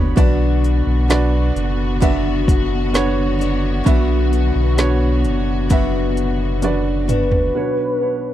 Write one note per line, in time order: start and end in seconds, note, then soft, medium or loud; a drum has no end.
0.00 0.13 F#1 medium
0.00 0.16 B2 medium
0.00 0.15 D3 medium
0.00 0.16 F#3 medium
0.00 0.15 B3 medium
0.00 0.16 B3 soft
0.00 0.18 B3 medium
0.00 0.15 D4 medium
0.00 0.17 D4 medium
0.00 0.16 F#4 medium
0.00 0.13 B4 medium
0.00 0.17 B4 medium
0.00 0.12 C#5 medium
0.00 0.18 D5 medium
0.00 0.13 B5 medium
0.15 0.82 B1 loud
0.15 1.08 B2 medium
0.15 1.51 B2 medium
0.15 7.51 D3 medium
0.15 1.08 F#3 medium
0.15 7.51 B3 medium
0.15 1.09 B3 medium
0.15 1.04 D4 medium
0.15 1.10 D4 medium
0.15 1.04 F#4 medium
0.15 7.51 F#4 medium
0.15 1.11 F#4 medium
0.15 1.04 B4 medium
0.15 1.05 D5 medium
0.15 kick loud
0.15 closed hi-hat medium
0.64 closed hi-hat medium
0.86 1.51 B1 medium
1.08 2.01 F#3 medium
1.08 2.01 B3 medium
1.08 1.97 D4 medium
1.08 2.02 D4 medium
1.08 1.97 F#4 medium
1.08 2.03 F#4 medium
1.08 1.97 B4 medium
1.08 1.97 D5 medium
1.08 snare loud
1.08 closed hi-hat medium
1.56 3.82 F#1 medium
1.56 closed hi-hat medium
2.00 3.39 B2 medium
2.00 3.85 F#3 medium
2.00 3.42 B3 medium
2.00 2.88 D4 medium
2.00 3.40 D4 medium
2.00 2.89 F#4 medium
2.00 3.38 F#4 medium
2.00 2.89 B4 medium
2.00 2.90 E5 medium
2.00 kick medium
2.00 closed hi-hat medium
2.48 kick medium
2.48 closed hi-hat medium
2.93 3.81 D4 medium
2.93 3.81 F#4 medium
2.93 3.82 B4 medium
2.93 3.82 C#5 medium
2.93 snare medium
2.93 closed hi-hat medium
3.39 3.86 B3 soft
3.39 3.86 D4 soft
3.39 3.85 F#4 medium
3.39 closed hi-hat medium
3.84 4.51 B1 loud
3.84 5.68 B2 medium
3.84 5.20 B2 medium
3.84 5.70 F#3 medium
3.84 5.70 B3 medium
3.84 4.73 D4 medium
3.84 4.73 F#4 medium
3.84 4.74 B4 medium
3.84 4.74 E5 medium
3.84 kick loud
3.84 closed hi-hat medium
3.88 5.71 D4 medium
3.88 5.71 F#4 medium
4.33 closed hi-hat medium
4.55 5.26 B1 loud
4.77 5.65 D4 medium
4.77 5.66 F#4 medium
4.77 5.66 B4 medium
4.77 5.66 C#5 medium
4.77 snare loud
4.77 closed hi-hat medium
5.24 7.51 F#1 medium
5.24 closed hi-hat medium
5.69 7.08 B2 medium
5.69 8.06 F#3 medium
5.69 7.11 B3 medium
5.69 6.58 D4 medium
5.69 7.09 D4 medium
5.69 6.58 F#4 medium
5.69 7.07 F#4 medium
5.69 6.58 B4 medium
5.69 6.59 E5 medium
5.69 kick medium
5.69 closed hi-hat medium
6.17 closed hi-hat medium
6.62 7.50 D4 medium
6.62 7.51 F#4 medium
6.62 7.51 B4 medium
6.62 7.51 D5 medium
6.62 closed hi-hat medium
6.62 high tom soft
7.08 7.56 B3 soft
7.08 7.55 D4 soft
7.08 7.54 F#4 soft
7.08 8.34 B4 loud
7.08 closed hi-hat medium
7.08 mid tom medium
7.32 floor tom medium
7.55 8.34 B1 soft
7.55 8.34 B2 soft
7.55 7.99 D4 medium
7.55 7.99 F#4 medium
7.55 7.99 B4 medium
7.55 8.00 C#5 medium
8.00 8.34 D4 soft
8.00 8.34 F#4 soft
8.00 8.34 B4 soft
8.00 8.34 C#5 soft